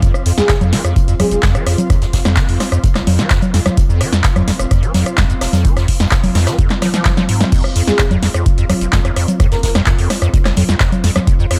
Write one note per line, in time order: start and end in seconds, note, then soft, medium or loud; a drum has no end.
0.00 0.12 F2 medium
0.00 11.59 C4 medium
0.00 11.59 F4 medium
0.00 11.59 F5 medium
0.00 11.59 C6 medium
0.00 kick loud
0.00 closed hi-hat medium
0.00 shaker medium
0.14 cross-stick medium
0.14 shaker soft
0.26 0.32 F2 loud
0.26 closed hi-hat medium
0.26 open hi-hat loud
0.38 0.41 F2 medium
0.38 0.52 G#4 medium
0.38 snare medium
0.38 closed hi-hat soft
0.38 shaker medium
0.49 0.56 F1 medium
0.49 kick loud
0.49 cross-stick medium
0.49 snare loud
0.49 clap loud
0.49 closed hi-hat medium
0.49 shaker medium
0.61 0.74 F2 loud
0.61 closed hi-hat soft
0.61 low conga medium
0.61 shaker soft
0.72 0.82 F3 medium
0.72 snare medium
0.72 closed hi-hat medium
0.72 open hi-hat loud
0.85 0.94 F2 medium
0.85 cross-stick medium
0.85 closed hi-hat soft
0.85 shaker medium
0.96 kick loud
0.96 closed hi-hat medium
0.96 shaker medium
1.08 1.14 F2 loud
1.08 closed hi-hat soft
1.08 shaker soft
1.19 1.23 F2 medium
1.19 1.27 G#4 medium
1.19 cross-stick medium
1.19 closed hi-hat medium
1.19 open hi-hat loud
1.19 low conga medium
1.31 1.38 F1 medium
1.31 1.39 G#4 medium
1.31 closed hi-hat medium
1.31 shaker medium
1.43 1.56 F2 loud
1.43 kick loud
1.43 snare medium
1.43 snare loud
1.43 clap loud
1.43 closed hi-hat medium
1.43 shaker medium
1.55 1.64 F3 medium
1.55 cross-stick medium
1.55 closed hi-hat soft
1.55 shaker soft
1.66 1.76 F2 medium
1.66 cross-stick medium
1.66 closed hi-hat medium
1.66 open hi-hat loud
1.78 closed hi-hat soft
1.78 closed hi-hat medium
1.78 low conga medium
1.78 shaker medium
1.90 1.96 F2 loud
1.90 kick loud
1.90 cross-stick medium
1.90 closed hi-hat medium
1.90 shaker medium
2.02 2.06 F2 medium
2.02 snare medium
2.02 closed hi-hat soft
2.02 shaker soft
2.13 2.20 F1 medium
2.13 kick medium
2.13 snare loud
2.13 closed hi-hat medium
2.13 open hi-hat loud
2.25 2.38 F2 loud
2.25 cross-stick medium
2.25 snare medium
2.25 closed hi-hat medium
2.25 shaker medium
2.36 2.47 F3 medium
2.36 kick loud
2.36 snare loud
2.36 clap loud
2.36 closed hi-hat medium
2.36 closed hi-hat loud
2.36 shaker medium
2.49 2.58 F2 medium
2.49 open hi-hat medium
2.49 shaker soft
2.60 cross-stick medium
2.60 snare medium
2.60 closed hi-hat medium
2.60 open hi-hat loud
2.72 2.78 F2 loud
2.72 cross-stick medium
2.72 closed hi-hat medium
2.72 closed hi-hat soft
2.72 shaker medium
2.84 2.87 F2 medium
2.84 kick loud
2.84 closed hi-hat medium
2.84 shaker medium
2.95 3.02 F1 medium
2.95 cross-stick medium
2.95 snare medium
2.95 clap soft
2.95 closed hi-hat soft
2.95 shaker soft
3.07 3.20 F2 loud
3.07 closed hi-hat medium
3.07 open hi-hat loud
3.07 low conga loud
3.19 3.28 F3 medium
3.19 snare medium
3.19 closed hi-hat medium
3.19 shaker medium
3.30 3.40 F2 medium
3.30 kick loud
3.30 cross-stick medium
3.30 snare loud
3.30 clap loud
3.30 closed hi-hat medium
3.30 shaker medium
3.41 closed hi-hat soft
3.41 low conga medium
3.41 shaker soft
3.54 3.60 F2 loud
3.54 snare medium
3.54 closed hi-hat medium
3.54 open hi-hat loud
3.66 3.70 F2 medium
3.66 cross-stick medium
3.66 snare soft
3.66 closed hi-hat medium
3.66 low conga medium
3.66 shaker medium
3.77 3.84 F1 medium
3.77 kick loud
3.77 closed hi-hat medium
3.77 shaker medium
3.89 4.02 F2 loud
3.89 shaker soft
4.01 4.11 F3 medium
4.01 cross-stick medium
4.01 closed hi-hat medium
4.01 open hi-hat loud
4.13 4.22 F2 medium
4.13 snare medium
4.13 closed hi-hat medium
4.13 shaker medium
4.24 kick loud
4.24 snare loud
4.24 clap loud
4.24 closed hi-hat medium
4.24 shaker medium
4.36 4.42 F2 loud
4.36 cross-stick medium
4.36 closed hi-hat soft
4.36 low conga medium
4.36 shaker soft
4.47 4.52 F2 medium
4.47 snare medium
4.47 closed hi-hat medium
4.47 open hi-hat loud
4.59 4.66 F1 medium
4.59 cross-stick medium
4.59 closed hi-hat medium
4.59 shaker medium
4.71 4.84 F2 loud
4.71 kick loud
4.71 cross-stick medium
4.71 closed hi-hat medium
4.71 shaker medium
4.83 4.92 F3 medium
4.83 closed hi-hat soft
4.83 shaker soft
4.94 5.04 F2 medium
4.94 snare loud
4.94 closed hi-hat medium
4.94 open hi-hat loud
4.94 low conga loud
5.06 cross-stick medium
5.06 closed hi-hat medium
5.06 shaker medium
5.17 5.24 F2 loud
5.17 kick loud
5.17 snare medium
5.17 snare loud
5.17 clap loud
5.17 closed hi-hat medium
5.17 shaker medium
5.30 5.34 F2 medium
5.30 closed hi-hat soft
5.30 shaker soft
5.41 5.48 F1 medium
5.41 cross-stick medium
5.41 snare loud
5.41 closed hi-hat medium
5.41 open hi-hat loud
5.53 5.66 F2 loud
5.53 snare loud
5.53 closed hi-hat medium
5.53 low conga medium
5.53 shaker medium
5.65 5.74 F3 medium
5.65 kick loud
5.65 closed hi-hat medium
5.65 shaker medium
5.76 5.86 F2 medium
5.76 cross-stick medium
5.76 snare medium
5.76 closed hi-hat soft
5.76 shaker soft
5.88 kick medium
5.88 open hi-hat loud
5.88 open hi-hat medium
6.00 6.06 F2 loud
6.00 snare medium
6.00 closed hi-hat medium
6.00 shaker medium
6.11 6.16 F2 medium
6.11 kick loud
6.11 cross-stick medium
6.11 snare loud
6.11 clap loud
6.11 closed hi-hat medium
6.11 shaker medium
6.23 6.30 F1 medium
6.23 open hi-hat medium
6.23 low conga medium
6.23 shaker soft
6.35 6.48 F2 loud
6.35 snare medium
6.35 snare loud
6.35 closed hi-hat medium
6.35 open hi-hat loud
6.46 6.56 F3 medium
6.46 cross-stick medium
6.46 snare loud
6.46 closed hi-hat medium
6.46 shaker medium
6.58 6.68 F2 medium
6.58 kick loud
6.58 closed hi-hat medium
6.58 shaker medium
6.70 snare medium
6.70 clap soft
6.70 closed hi-hat soft
6.70 shaker soft
6.82 6.88 F3 medium
6.82 cross-stick medium
6.82 snare loud
6.82 closed hi-hat medium
6.82 open hi-hat loud
6.82 low conga loud
6.94 7.03 F3 medium
6.94 snare medium
6.94 closed hi-hat medium
6.94 shaker medium
7.05 7.12 F3 medium
7.05 kick loud
7.05 snare medium
7.05 snare loud
7.05 clap loud
7.05 closed hi-hat medium
7.05 shaker medium
7.17 7.24 F3 loud
7.17 snare medium
7.17 closed hi-hat soft
7.17 low conga medium
7.17 shaker soft
7.28 7.42 G#2 medium
7.28 closed hi-hat medium
7.28 open hi-hat loud
7.40 7.44 F2 loud
7.40 snare medium
7.40 closed hi-hat medium
7.40 low conga medium
7.40 shaker medium
7.52 7.62 F2 medium
7.52 kick loud
7.52 closed hi-hat medium
7.52 crash medium
7.52 shaker medium
7.64 cross-stick medium
7.64 shaker soft
7.76 7.82 F2 loud
7.76 closed hi-hat medium
7.76 open hi-hat loud
7.87 7.91 F2 medium
7.87 8.02 G#4 loud
7.87 snare medium
7.87 closed hi-hat medium
7.87 shaker medium
7.99 8.06 F1 medium
7.99 kick loud
7.99 cross-stick medium
7.99 snare loud
7.99 clap loud
7.99 closed hi-hat medium
7.99 shaker medium
8.11 8.17 F2 loud
8.11 closed hi-hat soft
8.11 low conga medium
8.11 shaker soft
8.23 8.29 F2 medium
8.23 snare medium
8.23 closed hi-hat medium
8.23 open hi-hat loud
8.34 8.44 F2 medium
8.34 cross-stick medium
8.34 closed hi-hat medium
8.34 shaker medium
8.46 kick loud
8.46 closed hi-hat medium
8.46 shaker medium
8.58 8.64 F2 loud
8.58 closed hi-hat soft
8.58 shaker soft
8.70 8.73 F2 medium
8.70 cross-stick medium
8.70 closed hi-hat medium
8.70 open hi-hat loud
8.70 low conga loud
8.81 8.88 F1 medium
8.81 closed hi-hat medium
8.81 shaker medium
8.93 8.99 F2 loud
8.93 kick loud
8.93 snare loud
8.93 snare medium
8.93 clap loud
8.93 closed hi-hat medium
8.93 shaker medium
9.05 9.11 F2 medium
9.05 cross-stick medium
9.05 closed hi-hat soft
9.05 shaker soft
9.16 9.26 F2 medium
9.16 cross-stick medium
9.16 closed hi-hat medium
9.16 open hi-hat loud
9.28 closed hi-hat medium
9.28 closed hi-hat soft
9.28 low conga medium
9.28 shaker medium
9.40 9.46 F2 loud
9.40 kick loud
9.40 cross-stick medium
9.40 closed hi-hat medium
9.40 shaker medium
9.52 9.55 F2 medium
9.52 9.59 A#4 medium
9.52 snare medium
9.52 closed hi-hat soft
9.52 shaker soft
9.63 9.70 F1 medium
9.63 9.71 A#4 medium
9.63 kick medium
9.63 snare loud
9.63 closed hi-hat medium
9.63 open hi-hat loud
9.75 9.82 F2 loud
9.75 cross-stick medium
9.75 snare medium
9.75 closed hi-hat medium
9.75 shaker medium
9.86 9.93 F2 medium
9.86 kick loud
9.86 snare loud
9.86 clap loud
9.86 closed hi-hat medium
9.86 shaker medium
9.99 10.08 F2 medium
9.99 open hi-hat medium
9.99 shaker soft
10.10 cross-stick medium
10.10 snare medium
10.10 closed hi-hat medium
10.10 open hi-hat loud
10.22 10.28 F2 loud
10.22 cross-stick medium
10.22 closed hi-hat medium
10.22 closed hi-hat soft
10.22 shaker medium
10.34 10.38 F2 medium
10.34 kick loud
10.34 closed hi-hat medium
10.34 shaker medium
10.45 10.52 F1 medium
10.45 cross-stick medium
10.45 snare medium
10.45 clap soft
10.45 closed hi-hat soft
10.45 shaker soft
10.56 10.64 F2 loud
10.56 closed hi-hat medium
10.56 open hi-hat loud
10.56 low conga medium
10.69 10.75 F2 medium
10.69 snare medium
10.69 closed hi-hat medium
10.69 shaker medium
10.80 10.90 F2 medium
10.80 kick loud
10.80 cross-stick medium
10.80 snare loud
10.80 clap loud
10.80 closed hi-hat medium
10.80 shaker medium
10.92 closed hi-hat soft
10.92 low conga medium
10.92 shaker soft
11.03 11.10 F2 loud
11.03 snare medium
11.03 closed hi-hat medium
11.03 open hi-hat loud
11.16 11.20 F2 medium
11.16 cross-stick medium
11.16 snare soft
11.16 closed hi-hat medium
11.16 low conga medium
11.16 shaker medium
11.27 11.34 F1 medium
11.27 kick loud
11.27 closed hi-hat medium
11.27 shaker medium
11.39 11.46 F2 loud
11.39 shaker soft
11.50 11.57 F2 medium
11.50 cross-stick medium
11.50 closed hi-hat medium
11.50 open hi-hat loud